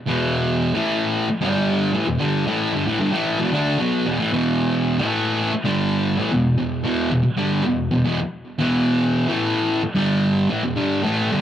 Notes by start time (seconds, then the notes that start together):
0.07 E2 B2 E3
0.74 A2 E3 A3
1.29 muted distorted electric guitar stroke
1.41 G2 D3 G3
1.94 A2 E3
2.07 E2 B2
2.19 G2 D3 G3
2.46 A2 E3 A3
2.73 G2 D3
2.87 A2 E3
3.00 G2 D3
3.12 A2 E3 A3
3.39 E2 B2
3.54 D3 A3 D4
3.79 B2 F#3 B3
4.06 E2 B2
4.19 A2 E3
4.32 E2 B2 E3
4.98 A2 E3 A3
5.52 muted distorted electric guitar stroke
5.64 G2 D3 G3
6.18 A2 E3
6.31 E2 B2
6.58 E2 B2
6.84 E2 B2 E3
7.11 E2 B2
7.24 muted distorted electric guitar stroke
7.37 G2 D3 G3
7.64 E2 B2
7.91 E2 B2
8.05 E2 B2
8.59 E2 B2 E3
9.28 A2 E3 A3
9.83 muted distorted electric guitar stroke
9.95 G2 D3 G3
10.49 A2 E3
10.63 E2 B2
10.76 G2 D3 G3
11.03 A2 E3 A3
11.31 G2 D3